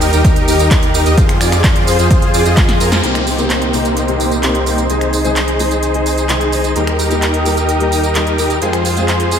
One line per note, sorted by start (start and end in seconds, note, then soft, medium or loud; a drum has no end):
0.00 0.10 D#2 loud
0.00 1.16 D#4 medium
0.00 0.11 D#4 medium
0.00 1.16 G4 medium
0.00 0.11 G4 medium
0.00 1.16 A#4 medium
0.00 0.11 A#4 medium
0.00 open hi-hat medium
0.00 tambourine medium
0.13 0.22 D#2 medium
0.13 0.22 D#4 medium
0.13 0.22 G4 medium
0.13 0.22 A#4 loud
0.13 closed hi-hat soft
0.13 tambourine soft
0.24 0.45 D#2 medium
0.24 0.43 D#4 loud
0.24 0.43 G4 medium
0.24 0.43 A#4 loud
0.24 kick loud
0.24 closed hi-hat medium
0.24 tambourine soft
0.36 closed hi-hat soft
0.48 0.69 D#2 loud
0.48 0.68 D#4 medium
0.48 0.68 G4 medium
0.48 0.68 A#4 loud
0.48 open hi-hat loud
0.48 tambourine medium
0.59 closed hi-hat soft
0.59 tambourine soft
0.71 0.92 D#2 loud
0.71 0.90 D#4 medium
0.71 0.90 A#4 loud
0.71 kick loud
0.71 clap loud
0.71 closed hi-hat medium
0.71 tambourine soft
0.83 closed hi-hat soft
0.94 1.04 D#2 loud
0.94 1.04 D#4 medium
0.94 1.04 G4 medium
0.94 1.04 A#4 medium
0.94 open hi-hat medium
0.94 tambourine medium
1.06 1.15 D#2 loud
1.06 1.16 D#4 loud
1.06 1.16 G4 medium
1.06 1.16 D#5 loud
1.06 closed hi-hat soft
1.06 tambourine soft
1.18 1.38 F2 loud
1.18 1.38 F4 medium
1.18 3.02 F4 medium
1.18 1.38 G#4 medium
1.18 3.02 G#4 medium
1.18 1.38 C5 loud
1.18 3.02 C5 medium
1.18 kick loud
1.18 closed hi-hat medium
1.18 tambourine soft
1.29 finger snap medium
1.29 closed hi-hat soft
1.41 1.62 F2 medium
1.41 1.61 F4 medium
1.41 1.61 G#4 medium
1.41 1.61 D5 medium
1.41 finger snap medium
1.41 open hi-hat loud
1.41 tambourine medium
1.52 finger snap medium
1.52 closed hi-hat soft
1.52 tambourine soft
1.64 1.85 F2 loud
1.64 1.85 F4 medium
1.64 kick loud
1.64 clap loud
1.64 closed hi-hat medium
1.64 tambourine soft
1.76 closed hi-hat soft
1.87 1.97 F2 loud
1.87 1.97 F4 medium
1.87 1.97 G#4 medium
1.87 1.97 C5 medium
1.87 open hi-hat medium
1.87 tambourine medium
1.99 2.08 F2 medium
1.99 2.08 F4 medium
1.99 2.08 G#4 medium
1.99 2.08 C5 loud
1.99 closed hi-hat soft
1.99 tambourine soft
2.11 2.31 F2 loud
2.11 2.29 F4 medium
2.11 2.29 G#4 medium
2.11 2.29 C5 loud
2.11 kick loud
2.11 closed hi-hat medium
2.11 tambourine soft
2.22 closed hi-hat soft
2.34 2.43 F2 medium
2.34 2.44 F4 medium
2.34 2.44 G#4 medium
2.34 2.44 D5 loud
2.34 open hi-hat loud
2.34 tambourine medium
2.45 2.55 F2 loud
2.45 2.55 F4 loud
2.45 2.55 G#4 medium
2.45 2.55 D#5 loud
2.45 closed hi-hat soft
2.45 tambourine soft
2.57 2.78 F2 loud
2.57 2.78 F4 medium
2.57 kick loud
2.57 snare medium
2.57 clap loud
2.57 closed hi-hat medium
2.57 tambourine soft
2.69 snare medium
2.69 closed hi-hat soft
2.80 3.01 F2 medium
2.80 3.01 F4 medium
2.80 3.01 G#4 medium
2.80 3.01 A#4 loud
2.80 open hi-hat medium
2.80 tambourine medium
2.92 snare medium
2.92 closed hi-hat soft
2.92 tambourine soft
3.03 4.87 C2 medium
3.03 3.35 C3 medium
3.03 3.36 A#3 medium
3.03 4.87 A#3 medium
3.03 3.36 C4 medium
3.03 4.87 C4 medium
3.03 4.87 D#4 medium
3.03 3.36 D#4 medium
3.03 4.87 G4 medium
3.03 3.36 G4 medium
3.03 4.88 A#4 medium
3.03 4.87 C5 medium
3.03 6.72 D#5 medium
3.03 6.72 C6 medium
3.03 closed hi-hat medium
3.03 tambourine soft
3.03 downlifter medium
3.15 finger snap medium
3.15 closed hi-hat soft
3.27 open hi-hat medium
3.27 tambourine medium
3.38 3.50 C3 medium
3.38 3.50 A#3 medium
3.38 3.50 C4 medium
3.38 3.50 D#4 medium
3.38 3.50 G4 loud
3.38 closed hi-hat soft
3.38 tambourine soft
3.50 clap loud
3.50 closed hi-hat medium
3.50 tambourine soft
3.62 closed hi-hat soft
3.73 3.84 C3 medium
3.73 3.85 A#3 medium
3.73 3.85 C4 medium
3.73 3.85 D#4 medium
3.73 3.85 G4 medium
3.73 open hi-hat medium
3.73 tambourine medium
3.85 closed hi-hat soft
3.85 tambourine soft
3.97 closed hi-hat medium
3.97 tambourine soft
4.08 4.40 C3 medium
4.08 4.40 A#3 medium
4.08 4.40 C4 medium
4.08 4.40 D#4 medium
4.08 4.41 G4 medium
4.08 closed hi-hat soft
4.20 open hi-hat medium
4.20 tambourine medium
4.32 closed hi-hat soft
4.32 tambourine soft
4.43 4.61 C3 medium
4.43 4.61 A#3 medium
4.43 4.61 C4 medium
4.43 4.62 D#4 medium
4.43 4.62 G4 medium
4.43 clap loud
4.43 closed hi-hat medium
4.43 tambourine soft
4.55 closed hi-hat soft
4.66 4.84 A#3 medium
4.66 4.85 C4 medium
4.66 4.85 D#4 medium
4.66 4.85 G4 medium
4.66 open hi-hat medium
4.66 tambourine medium
4.78 closed hi-hat soft
4.78 tambourine soft
4.89 6.73 C2 medium
4.89 5.21 C3 medium
4.89 5.22 G#3 medium
4.89 5.22 C4 medium
4.89 6.73 D#4 medium
4.89 5.22 D#4 medium
4.89 6.74 G#4 medium
4.89 6.73 G#4 medium
4.89 5.22 G#4 medium
4.89 6.73 C5 medium
4.89 closed hi-hat medium
4.89 tambourine soft
5.01 finger snap medium
5.01 closed hi-hat soft
5.13 open hi-hat loud
5.13 tambourine medium
5.24 5.36 C3 medium
5.24 5.36 G#3 medium
5.24 5.36 C4 medium
5.24 5.36 D#4 medium
5.24 5.36 G#4 medium
5.24 closed hi-hat soft
5.24 tambourine soft
5.36 clap loud
5.36 closed hi-hat medium
5.36 tambourine soft
5.48 closed hi-hat soft
5.59 5.70 C3 medium
5.59 5.71 G#3 medium
5.59 5.71 C4 medium
5.59 5.71 D#4 medium
5.59 5.71 G#4 medium
5.59 open hi-hat medium
5.59 tambourine medium
5.71 closed hi-hat soft
5.71 tambourine soft
5.83 closed hi-hat medium
5.83 tambourine soft
5.94 6.26 C3 medium
5.94 6.26 G#3 medium
5.94 6.26 C4 medium
5.94 6.27 D#4 medium
5.94 6.27 G#4 medium
5.94 closed hi-hat soft
6.06 open hi-hat loud
6.06 tambourine medium
6.18 closed hi-hat soft
6.18 tambourine soft
6.29 6.47 C3 medium
6.29 6.47 G#3 medium
6.29 6.47 C4 medium
6.29 6.48 D#4 medium
6.29 6.48 G#4 medium
6.29 clap loud
6.29 closed hi-hat medium
6.29 tambourine soft
6.41 closed hi-hat soft
6.52 6.70 G#3 medium
6.52 6.71 C4 medium
6.52 6.71 D#4 medium
6.52 6.71 G#4 medium
6.52 open hi-hat medium
6.52 tambourine medium
6.64 closed hi-hat soft
6.64 tambourine soft
6.75 8.59 D#2 medium
6.75 7.07 G3 medium
6.75 7.08 A#3 medium
6.75 8.59 D#4 medium
6.75 7.08 D#4 medium
6.75 8.59 G4 medium
6.75 7.08 G4 medium
6.75 8.60 A#4 medium
6.75 8.59 A#4 medium
6.75 8.60 G5 medium
6.75 8.60 D#6 medium
6.75 closed hi-hat medium
6.75 tambourine soft
6.87 finger snap medium
6.87 closed hi-hat soft
6.99 open hi-hat loud
6.99 tambourine medium
7.10 7.22 G3 medium
7.10 7.22 A#3 medium
7.10 7.22 D#4 medium
7.10 7.22 G4 loud
7.10 closed hi-hat soft
7.10 tambourine soft
7.22 clap loud
7.22 closed hi-hat medium
7.22 tambourine soft
7.34 closed hi-hat soft
7.45 7.57 G3 medium
7.45 7.57 A#3 medium
7.45 7.57 D#4 medium
7.45 7.57 G4 medium
7.45 open hi-hat medium
7.45 tambourine medium
7.57 closed hi-hat soft
7.57 tambourine soft
7.69 closed hi-hat medium
7.69 tambourine soft
7.80 8.12 G3 medium
7.80 8.12 A#3 medium
7.80 8.13 D#4 medium
7.80 8.13 G4 medium
7.80 closed hi-hat soft
7.92 open hi-hat medium
7.92 tambourine medium
8.04 closed hi-hat soft
8.04 tambourine soft
8.15 8.33 G3 medium
8.15 8.33 A#3 medium
8.15 8.34 D#4 medium
8.15 8.34 G4 medium
8.15 clap loud
8.15 closed hi-hat medium
8.15 tambourine soft
8.27 closed hi-hat soft
8.38 8.56 G3 medium
8.38 8.57 A#3 medium
8.38 8.57 D#4 medium
8.38 8.57 G4 medium
8.38 open hi-hat medium
8.38 tambourine medium
8.50 closed hi-hat soft
8.50 tambourine soft
8.61 9.39 F2 medium
8.61 8.94 G#3 medium
8.61 8.94 C4 medium
8.61 9.39 F4 medium
8.61 8.94 F4 medium
8.61 9.39 G#4 medium
8.61 8.94 G#4 medium
8.61 9.39 C5 medium
8.61 9.39 F5 medium
8.61 9.39 C6 medium
8.61 closed hi-hat medium
8.61 tambourine soft
8.73 finger snap medium
8.73 closed hi-hat soft
8.85 open hi-hat loud
8.85 tambourine medium
8.96 9.08 G#3 medium
8.96 9.08 C4 medium
8.96 9.08 F4 medium
8.96 9.08 G#4 loud
8.96 closed hi-hat soft
8.96 tambourine soft
9.08 clap loud
9.08 closed hi-hat medium
9.08 tambourine soft
9.20 closed hi-hat soft
9.31 9.39 G#3 medium
9.31 9.39 C4 medium
9.31 9.39 F4 medium
9.31 9.39 G#4 medium
9.31 open hi-hat medium
9.31 tambourine medium